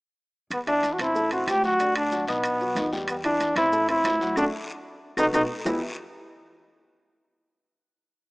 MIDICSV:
0, 0, Header, 1, 5, 480
1, 0, Start_track
1, 0, Key_signature, 1, "minor"
1, 0, Tempo, 321716
1, 767, Time_signature, 4, 2, 24, 8
1, 12385, End_track
2, 0, Start_track
2, 0, Title_t, "Grand piano"
2, 0, Program_c, 0, 0
2, 999, Note_on_c, 0, 52, 82
2, 1008, Note_on_c, 0, 64, 81
2, 1009, Note_on_c, 0, 76, 82
2, 1395, Note_off_c, 0, 52, 0
2, 1400, Note_off_c, 0, 64, 0
2, 1401, Note_off_c, 0, 76, 0
2, 1483, Note_on_c, 0, 60, 76
2, 1492, Note_on_c, 0, 72, 70
2, 1496, Note_on_c, 0, 84, 77
2, 1681, Note_off_c, 0, 60, 0
2, 1686, Note_off_c, 0, 72, 0
2, 1688, Note_off_c, 0, 84, 0
2, 1719, Note_on_c, 0, 69, 71
2, 1721, Note_on_c, 0, 57, 76
2, 1728, Note_on_c, 0, 81, 69
2, 1918, Note_off_c, 0, 69, 0
2, 1919, Note_off_c, 0, 57, 0
2, 1923, Note_off_c, 0, 81, 0
2, 1961, Note_on_c, 0, 60, 67
2, 1965, Note_on_c, 0, 72, 66
2, 1971, Note_on_c, 0, 84, 74
2, 2355, Note_off_c, 0, 60, 0
2, 2358, Note_off_c, 0, 72, 0
2, 2361, Note_off_c, 0, 84, 0
2, 2443, Note_on_c, 0, 54, 68
2, 2448, Note_on_c, 0, 66, 79
2, 2450, Note_on_c, 0, 78, 67
2, 2640, Note_off_c, 0, 54, 0
2, 2643, Note_off_c, 0, 66, 0
2, 2644, Note_off_c, 0, 78, 0
2, 2680, Note_on_c, 0, 50, 66
2, 2686, Note_on_c, 0, 62, 75
2, 2688, Note_on_c, 0, 74, 72
2, 3075, Note_off_c, 0, 50, 0
2, 3078, Note_off_c, 0, 62, 0
2, 3079, Note_off_c, 0, 74, 0
2, 3165, Note_on_c, 0, 54, 73
2, 3172, Note_on_c, 0, 66, 74
2, 3173, Note_on_c, 0, 78, 74
2, 3360, Note_off_c, 0, 54, 0
2, 3364, Note_off_c, 0, 66, 0
2, 3366, Note_off_c, 0, 78, 0
2, 3405, Note_on_c, 0, 63, 64
2, 3405, Note_on_c, 0, 75, 80
2, 3416, Note_on_c, 0, 87, 69
2, 3797, Note_off_c, 0, 63, 0
2, 3797, Note_off_c, 0, 75, 0
2, 3803, Note_off_c, 0, 87, 0
2, 3886, Note_on_c, 0, 54, 73
2, 3895, Note_on_c, 0, 66, 64
2, 3895, Note_on_c, 0, 78, 67
2, 4081, Note_off_c, 0, 54, 0
2, 4086, Note_off_c, 0, 66, 0
2, 4086, Note_off_c, 0, 78, 0
2, 4122, Note_on_c, 0, 51, 89
2, 4126, Note_on_c, 0, 63, 73
2, 4130, Note_on_c, 0, 75, 83
2, 4318, Note_off_c, 0, 51, 0
2, 4321, Note_off_c, 0, 63, 0
2, 4323, Note_off_c, 0, 75, 0
2, 4363, Note_on_c, 0, 55, 86
2, 4368, Note_on_c, 0, 67, 85
2, 4369, Note_on_c, 0, 79, 80
2, 4756, Note_off_c, 0, 55, 0
2, 4759, Note_off_c, 0, 67, 0
2, 4759, Note_off_c, 0, 79, 0
2, 4839, Note_on_c, 0, 52, 85
2, 4842, Note_on_c, 0, 64, 88
2, 4850, Note_on_c, 0, 76, 85
2, 5233, Note_off_c, 0, 52, 0
2, 5235, Note_off_c, 0, 64, 0
2, 5240, Note_off_c, 0, 76, 0
2, 5332, Note_on_c, 0, 72, 75
2, 5334, Note_on_c, 0, 60, 72
2, 5339, Note_on_c, 0, 84, 75
2, 5524, Note_off_c, 0, 72, 0
2, 5526, Note_off_c, 0, 60, 0
2, 5528, Note_off_c, 0, 84, 0
2, 5557, Note_on_c, 0, 57, 78
2, 5562, Note_on_c, 0, 69, 75
2, 5565, Note_on_c, 0, 81, 72
2, 5755, Note_off_c, 0, 57, 0
2, 5758, Note_off_c, 0, 69, 0
2, 5760, Note_off_c, 0, 81, 0
2, 5795, Note_on_c, 0, 60, 77
2, 5800, Note_on_c, 0, 72, 69
2, 5807, Note_on_c, 0, 84, 75
2, 6191, Note_off_c, 0, 60, 0
2, 6194, Note_off_c, 0, 72, 0
2, 6199, Note_off_c, 0, 84, 0
2, 6283, Note_on_c, 0, 54, 87
2, 6290, Note_on_c, 0, 78, 84
2, 6291, Note_on_c, 0, 66, 70
2, 6479, Note_off_c, 0, 54, 0
2, 6483, Note_off_c, 0, 78, 0
2, 6484, Note_off_c, 0, 66, 0
2, 6511, Note_on_c, 0, 62, 92
2, 6513, Note_on_c, 0, 66, 94
2, 6513, Note_on_c, 0, 69, 93
2, 6669, Note_off_c, 0, 62, 0
2, 6670, Note_off_c, 0, 66, 0
2, 6670, Note_off_c, 0, 69, 0
2, 7714, Note_on_c, 0, 66, 99
2, 7715, Note_on_c, 0, 69, 89
2, 7718, Note_on_c, 0, 71, 96
2, 7871, Note_off_c, 0, 66, 0
2, 7872, Note_off_c, 0, 69, 0
2, 7874, Note_off_c, 0, 71, 0
2, 7960, Note_on_c, 0, 66, 99
2, 7964, Note_on_c, 0, 71, 93
2, 7966, Note_on_c, 0, 69, 99
2, 8115, Note_off_c, 0, 66, 0
2, 8118, Note_off_c, 0, 71, 0
2, 8119, Note_off_c, 0, 69, 0
2, 8428, Note_on_c, 0, 59, 73
2, 8433, Note_on_c, 0, 52, 86
2, 8436, Note_on_c, 0, 64, 79
2, 8439, Note_on_c, 0, 71, 81
2, 8440, Note_on_c, 0, 67, 76
2, 8446, Note_on_c, 0, 76, 86
2, 8659, Note_off_c, 0, 59, 0
2, 8662, Note_off_c, 0, 52, 0
2, 8663, Note_off_c, 0, 64, 0
2, 8665, Note_off_c, 0, 67, 0
2, 8665, Note_off_c, 0, 71, 0
2, 8669, Note_off_c, 0, 76, 0
2, 12385, End_track
3, 0, Start_track
3, 0, Title_t, "Trombone"
3, 0, Program_c, 1, 57
3, 797, Note_on_c, 1, 59, 74
3, 898, Note_off_c, 1, 59, 0
3, 1013, Note_on_c, 1, 62, 96
3, 1385, Note_on_c, 1, 66, 68
3, 1408, Note_off_c, 1, 62, 0
3, 1513, Note_on_c, 1, 64, 98
3, 1536, Note_off_c, 1, 66, 0
3, 1975, Note_off_c, 1, 64, 0
3, 1984, Note_on_c, 1, 66, 88
3, 2222, Note_on_c, 1, 67, 103
3, 2244, Note_off_c, 1, 66, 0
3, 2452, Note_off_c, 1, 67, 0
3, 2462, Note_on_c, 1, 66, 101
3, 2899, Note_off_c, 1, 66, 0
3, 2944, Note_on_c, 1, 62, 93
3, 3380, Note_off_c, 1, 62, 0
3, 3411, Note_on_c, 1, 59, 89
3, 4306, Note_off_c, 1, 59, 0
3, 4611, Note_on_c, 1, 59, 71
3, 4717, Note_off_c, 1, 59, 0
3, 4850, Note_on_c, 1, 62, 90
3, 5292, Note_off_c, 1, 62, 0
3, 5333, Note_on_c, 1, 64, 95
3, 5774, Note_off_c, 1, 64, 0
3, 5816, Note_on_c, 1, 64, 94
3, 6479, Note_off_c, 1, 64, 0
3, 6537, Note_on_c, 1, 62, 85
3, 6648, Note_off_c, 1, 62, 0
3, 7748, Note_on_c, 1, 63, 98
3, 7856, Note_off_c, 1, 63, 0
3, 7981, Note_on_c, 1, 63, 88
3, 8091, Note_off_c, 1, 63, 0
3, 8448, Note_on_c, 1, 64, 71
3, 8670, Note_off_c, 1, 64, 0
3, 12385, End_track
4, 0, Start_track
4, 0, Title_t, "Upright bass"
4, 0, Program_c, 2, 32
4, 753, Note_on_c, 2, 40, 90
4, 1428, Note_off_c, 2, 40, 0
4, 1474, Note_on_c, 2, 33, 92
4, 2148, Note_off_c, 2, 33, 0
4, 2195, Note_on_c, 2, 38, 87
4, 3314, Note_off_c, 2, 38, 0
4, 3387, Note_on_c, 2, 35, 84
4, 4063, Note_off_c, 2, 35, 0
4, 4105, Note_on_c, 2, 40, 89
4, 5229, Note_off_c, 2, 40, 0
4, 5303, Note_on_c, 2, 33, 102
4, 5981, Note_off_c, 2, 33, 0
4, 6025, Note_on_c, 2, 38, 95
4, 6479, Note_off_c, 2, 38, 0
4, 6513, Note_on_c, 2, 38, 95
4, 6695, Note_off_c, 2, 38, 0
4, 7712, Note_on_c, 2, 35, 88
4, 7896, Note_off_c, 2, 35, 0
4, 7949, Note_on_c, 2, 35, 101
4, 8135, Note_off_c, 2, 35, 0
4, 8435, Note_on_c, 2, 40, 98
4, 8663, Note_off_c, 2, 40, 0
4, 12385, End_track
5, 0, Start_track
5, 0, Title_t, "Drums"
5, 758, Note_on_c, 9, 70, 72
5, 762, Note_on_c, 9, 74, 61
5, 766, Note_on_c, 9, 75, 51
5, 769, Note_on_c, 9, 63, 30
5, 769, Note_on_c, 9, 65, 88
5, 907, Note_off_c, 9, 70, 0
5, 911, Note_off_c, 9, 74, 0
5, 915, Note_off_c, 9, 75, 0
5, 918, Note_off_c, 9, 63, 0
5, 918, Note_off_c, 9, 65, 0
5, 1001, Note_on_c, 9, 70, 29
5, 1002, Note_on_c, 9, 63, 37
5, 1005, Note_on_c, 9, 65, 71
5, 1150, Note_off_c, 9, 70, 0
5, 1151, Note_off_c, 9, 63, 0
5, 1154, Note_off_c, 9, 65, 0
5, 1239, Note_on_c, 9, 73, 61
5, 1240, Note_on_c, 9, 63, 82
5, 1240, Note_on_c, 9, 65, 62
5, 1250, Note_on_c, 9, 70, 70
5, 1388, Note_off_c, 9, 73, 0
5, 1389, Note_off_c, 9, 63, 0
5, 1389, Note_off_c, 9, 65, 0
5, 1399, Note_off_c, 9, 70, 0
5, 1470, Note_on_c, 9, 73, 76
5, 1474, Note_on_c, 9, 75, 72
5, 1479, Note_on_c, 9, 63, 30
5, 1479, Note_on_c, 9, 64, 72
5, 1483, Note_on_c, 9, 70, 30
5, 1484, Note_on_c, 9, 65, 98
5, 1619, Note_off_c, 9, 73, 0
5, 1623, Note_off_c, 9, 75, 0
5, 1629, Note_off_c, 9, 63, 0
5, 1629, Note_off_c, 9, 64, 0
5, 1632, Note_off_c, 9, 70, 0
5, 1633, Note_off_c, 9, 65, 0
5, 1710, Note_on_c, 9, 74, 63
5, 1722, Note_on_c, 9, 70, 62
5, 1729, Note_on_c, 9, 63, 38
5, 1859, Note_off_c, 9, 74, 0
5, 1871, Note_off_c, 9, 70, 0
5, 1879, Note_off_c, 9, 63, 0
5, 1954, Note_on_c, 9, 65, 72
5, 1966, Note_on_c, 9, 70, 31
5, 1968, Note_on_c, 9, 63, 33
5, 2103, Note_off_c, 9, 65, 0
5, 2115, Note_off_c, 9, 70, 0
5, 2118, Note_off_c, 9, 63, 0
5, 2197, Note_on_c, 9, 75, 62
5, 2202, Note_on_c, 9, 73, 72
5, 2204, Note_on_c, 9, 65, 96
5, 2204, Note_on_c, 9, 66, 68
5, 2206, Note_on_c, 9, 63, 88
5, 2209, Note_on_c, 9, 70, 69
5, 2347, Note_off_c, 9, 75, 0
5, 2352, Note_off_c, 9, 73, 0
5, 2353, Note_off_c, 9, 65, 0
5, 2353, Note_off_c, 9, 66, 0
5, 2355, Note_off_c, 9, 63, 0
5, 2358, Note_off_c, 9, 70, 0
5, 2441, Note_on_c, 9, 70, 27
5, 2442, Note_on_c, 9, 63, 81
5, 2444, Note_on_c, 9, 73, 58
5, 2591, Note_off_c, 9, 63, 0
5, 2591, Note_off_c, 9, 70, 0
5, 2593, Note_off_c, 9, 73, 0
5, 2680, Note_on_c, 9, 70, 70
5, 2680, Note_on_c, 9, 74, 70
5, 2685, Note_on_c, 9, 65, 62
5, 2829, Note_off_c, 9, 70, 0
5, 2829, Note_off_c, 9, 74, 0
5, 2834, Note_off_c, 9, 65, 0
5, 2916, Note_on_c, 9, 63, 36
5, 2917, Note_on_c, 9, 65, 102
5, 2918, Note_on_c, 9, 75, 64
5, 2923, Note_on_c, 9, 70, 26
5, 3066, Note_off_c, 9, 63, 0
5, 3067, Note_off_c, 9, 65, 0
5, 3068, Note_off_c, 9, 75, 0
5, 3072, Note_off_c, 9, 70, 0
5, 3152, Note_on_c, 9, 63, 55
5, 3157, Note_on_c, 9, 70, 67
5, 3159, Note_on_c, 9, 73, 59
5, 3301, Note_off_c, 9, 63, 0
5, 3306, Note_off_c, 9, 70, 0
5, 3309, Note_off_c, 9, 73, 0
5, 3395, Note_on_c, 9, 73, 68
5, 3397, Note_on_c, 9, 70, 29
5, 3408, Note_on_c, 9, 65, 68
5, 3545, Note_off_c, 9, 73, 0
5, 3546, Note_off_c, 9, 70, 0
5, 3558, Note_off_c, 9, 65, 0
5, 3634, Note_on_c, 9, 65, 94
5, 3639, Note_on_c, 9, 63, 36
5, 3641, Note_on_c, 9, 75, 54
5, 3647, Note_on_c, 9, 70, 70
5, 3650, Note_on_c, 9, 74, 65
5, 3783, Note_off_c, 9, 65, 0
5, 3788, Note_off_c, 9, 63, 0
5, 3790, Note_off_c, 9, 75, 0
5, 3796, Note_off_c, 9, 70, 0
5, 3799, Note_off_c, 9, 74, 0
5, 3887, Note_on_c, 9, 70, 32
5, 3888, Note_on_c, 9, 63, 32
5, 4036, Note_off_c, 9, 70, 0
5, 4037, Note_off_c, 9, 63, 0
5, 4122, Note_on_c, 9, 73, 77
5, 4123, Note_on_c, 9, 63, 75
5, 4124, Note_on_c, 9, 70, 72
5, 4125, Note_on_c, 9, 65, 68
5, 4125, Note_on_c, 9, 66, 75
5, 4272, Note_off_c, 9, 63, 0
5, 4272, Note_off_c, 9, 73, 0
5, 4273, Note_off_c, 9, 70, 0
5, 4275, Note_off_c, 9, 65, 0
5, 4275, Note_off_c, 9, 66, 0
5, 4354, Note_on_c, 9, 63, 83
5, 4366, Note_on_c, 9, 73, 70
5, 4372, Note_on_c, 9, 70, 32
5, 4504, Note_off_c, 9, 63, 0
5, 4515, Note_off_c, 9, 73, 0
5, 4521, Note_off_c, 9, 70, 0
5, 4590, Note_on_c, 9, 65, 94
5, 4597, Note_on_c, 9, 75, 56
5, 4601, Note_on_c, 9, 70, 71
5, 4605, Note_on_c, 9, 74, 74
5, 4739, Note_off_c, 9, 65, 0
5, 4746, Note_off_c, 9, 75, 0
5, 4750, Note_off_c, 9, 70, 0
5, 4754, Note_off_c, 9, 74, 0
5, 4831, Note_on_c, 9, 63, 40
5, 4836, Note_on_c, 9, 65, 76
5, 4845, Note_on_c, 9, 70, 30
5, 4980, Note_off_c, 9, 63, 0
5, 4985, Note_off_c, 9, 65, 0
5, 4994, Note_off_c, 9, 70, 0
5, 5068, Note_on_c, 9, 63, 88
5, 5078, Note_on_c, 9, 70, 75
5, 5081, Note_on_c, 9, 65, 76
5, 5085, Note_on_c, 9, 73, 60
5, 5217, Note_off_c, 9, 63, 0
5, 5227, Note_off_c, 9, 70, 0
5, 5230, Note_off_c, 9, 65, 0
5, 5235, Note_off_c, 9, 73, 0
5, 5305, Note_on_c, 9, 75, 70
5, 5309, Note_on_c, 9, 63, 28
5, 5309, Note_on_c, 9, 64, 83
5, 5312, Note_on_c, 9, 73, 69
5, 5318, Note_on_c, 9, 65, 96
5, 5327, Note_on_c, 9, 70, 29
5, 5454, Note_off_c, 9, 75, 0
5, 5458, Note_off_c, 9, 63, 0
5, 5458, Note_off_c, 9, 64, 0
5, 5461, Note_off_c, 9, 73, 0
5, 5468, Note_off_c, 9, 65, 0
5, 5477, Note_off_c, 9, 70, 0
5, 5547, Note_on_c, 9, 63, 35
5, 5560, Note_on_c, 9, 70, 69
5, 5561, Note_on_c, 9, 74, 70
5, 5696, Note_off_c, 9, 63, 0
5, 5709, Note_off_c, 9, 70, 0
5, 5710, Note_off_c, 9, 74, 0
5, 5795, Note_on_c, 9, 63, 33
5, 5796, Note_on_c, 9, 70, 31
5, 5799, Note_on_c, 9, 65, 72
5, 5944, Note_off_c, 9, 63, 0
5, 5945, Note_off_c, 9, 70, 0
5, 5948, Note_off_c, 9, 65, 0
5, 6022, Note_on_c, 9, 63, 86
5, 6035, Note_on_c, 9, 70, 69
5, 6035, Note_on_c, 9, 75, 65
5, 6043, Note_on_c, 9, 65, 98
5, 6043, Note_on_c, 9, 66, 75
5, 6044, Note_on_c, 9, 73, 69
5, 6171, Note_off_c, 9, 63, 0
5, 6184, Note_off_c, 9, 70, 0
5, 6184, Note_off_c, 9, 75, 0
5, 6192, Note_off_c, 9, 65, 0
5, 6192, Note_off_c, 9, 66, 0
5, 6194, Note_off_c, 9, 73, 0
5, 6268, Note_on_c, 9, 63, 95
5, 6285, Note_on_c, 9, 73, 68
5, 6290, Note_on_c, 9, 70, 30
5, 6417, Note_off_c, 9, 63, 0
5, 6434, Note_off_c, 9, 73, 0
5, 6439, Note_off_c, 9, 70, 0
5, 6505, Note_on_c, 9, 75, 83
5, 6513, Note_on_c, 9, 63, 87
5, 6521, Note_on_c, 9, 65, 89
5, 6522, Note_on_c, 9, 70, 103
5, 6524, Note_on_c, 9, 74, 100
5, 6654, Note_off_c, 9, 75, 0
5, 6663, Note_off_c, 9, 63, 0
5, 6670, Note_off_c, 9, 65, 0
5, 6671, Note_off_c, 9, 70, 0
5, 6673, Note_off_c, 9, 74, 0
5, 7716, Note_on_c, 9, 75, 104
5, 7719, Note_on_c, 9, 63, 108
5, 7724, Note_on_c, 9, 70, 107
5, 7726, Note_on_c, 9, 74, 100
5, 7727, Note_on_c, 9, 65, 102
5, 7865, Note_off_c, 9, 75, 0
5, 7868, Note_off_c, 9, 63, 0
5, 7873, Note_off_c, 9, 70, 0
5, 7875, Note_off_c, 9, 74, 0
5, 7876, Note_off_c, 9, 65, 0
5, 7953, Note_on_c, 9, 74, 107
5, 7962, Note_on_c, 9, 65, 97
5, 7963, Note_on_c, 9, 63, 110
5, 7964, Note_on_c, 9, 70, 109
5, 7970, Note_on_c, 9, 75, 96
5, 8102, Note_off_c, 9, 74, 0
5, 8111, Note_off_c, 9, 65, 0
5, 8112, Note_off_c, 9, 63, 0
5, 8113, Note_off_c, 9, 70, 0
5, 8119, Note_off_c, 9, 75, 0
5, 8423, Note_on_c, 9, 74, 103
5, 8444, Note_on_c, 9, 70, 96
5, 8446, Note_on_c, 9, 66, 96
5, 8448, Note_on_c, 9, 75, 79
5, 8449, Note_on_c, 9, 64, 89
5, 8572, Note_off_c, 9, 74, 0
5, 8593, Note_off_c, 9, 70, 0
5, 8596, Note_off_c, 9, 66, 0
5, 8597, Note_off_c, 9, 75, 0
5, 8599, Note_off_c, 9, 64, 0
5, 12385, End_track
0, 0, End_of_file